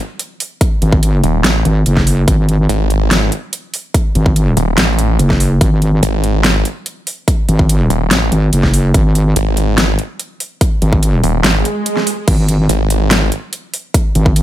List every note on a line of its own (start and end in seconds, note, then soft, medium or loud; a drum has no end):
0.19 closed hi-hat medium
0.40 open hi-hat loud
0.61 kick loud
0.61 closed hi-hat medium
0.82 1.22 G#1 loud
0.82 closed hi-hat medium
0.92 kick loud
1.03 closed hi-hat medium
1.24 1.43 D#1 loud
1.24 closed hi-hat medium
1.44 1.64 A1 loud
1.44 snare loud
1.44 closed hi-hat medium
1.65 1.84 G#1 loud
1.65 closed hi-hat medium
1.86 2.26 F#1 loud
1.86 closed hi-hat medium
1.97 kick medium
1.97 snare soft
2.07 open hi-hat loud
2.28 2.68 G#1 loud
2.28 kick loud
2.28 closed hi-hat medium
2.49 closed hi-hat medium
2.69 3.30 G#1 loud
2.69 closed hi-hat medium
2.90 closed hi-hat medium
3.11 snare loud
3.11 closed hi-hat medium
3.32 closed hi-hat medium
3.53 closed hi-hat medium
3.74 open hi-hat medium
3.94 kick loud
3.94 closed hi-hat medium
4.15 4.55 G#1 loud
4.15 closed hi-hat medium
4.26 kick loud
4.36 closed hi-hat medium
4.57 4.76 D#1 loud
4.57 closed hi-hat medium
4.78 5.18 A1 loud
4.78 snare loud
4.78 closed hi-hat medium
4.99 closed hi-hat medium
5.19 5.59 F#1 medium
5.19 closed hi-hat medium
5.30 kick medium
5.30 snare soft
5.40 open hi-hat medium
5.61 6.01 G#1 medium
5.61 kick loud
5.61 closed hi-hat medium
5.82 closed hi-hat soft
6.03 6.64 G#1 medium
6.03 closed hi-hat medium
6.24 closed hi-hat medium
6.44 snare loud
6.44 closed hi-hat medium
6.65 closed hi-hat medium
6.86 closed hi-hat medium
7.07 open hi-hat medium
7.28 kick loud
7.28 closed hi-hat medium
7.49 7.89 G#1 loud
7.49 closed hi-hat soft
7.59 kick loud
7.69 closed hi-hat medium
7.90 8.09 D#1 loud
7.90 closed hi-hat medium
8.11 8.30 A1 loud
8.11 snare loud
8.11 closed hi-hat medium
8.32 8.51 G#1 loud
8.32 closed hi-hat soft
8.53 8.93 F#1 medium
8.53 closed hi-hat medium
8.63 kick medium
8.63 snare soft
8.74 open hi-hat medium
8.94 9.34 G#1 loud
8.94 kick loud
8.94 closed hi-hat medium
9.15 closed hi-hat medium
9.36 9.97 G#1 loud
9.36 closed hi-hat medium
9.57 closed hi-hat medium
9.78 snare loud
9.78 closed hi-hat medium
9.99 closed hi-hat medium
10.20 closed hi-hat medium
10.40 open hi-hat medium
10.61 kick loud
10.61 closed hi-hat medium
10.82 11.22 G#1 loud
10.82 closed hi-hat medium
10.93 kick loud
11.03 closed hi-hat medium
11.24 11.43 D#1 medium
11.24 open hi-hat medium
11.44 11.64 G#1 loud
11.44 snare loud
11.44 closed hi-hat medium
11.44 swell medium
11.65 closed hi-hat medium
11.86 closed hi-hat medium
11.97 snare soft
12.07 open hi-hat loud
12.28 12.68 G#1 medium
12.28 kick loud
12.28 closed hi-hat medium
12.28 crash medium
12.49 closed hi-hat medium
12.69 13.30 G#1 medium
12.69 closed hi-hat medium
12.90 closed hi-hat medium
13.11 snare loud
13.11 closed hi-hat medium
13.32 closed hi-hat medium
13.53 closed hi-hat medium
13.74 open hi-hat loud
13.94 kick loud
13.94 closed hi-hat medium
14.15 14.43 G#1 loud
14.15 closed hi-hat medium
14.26 kick loud
14.36 closed hi-hat medium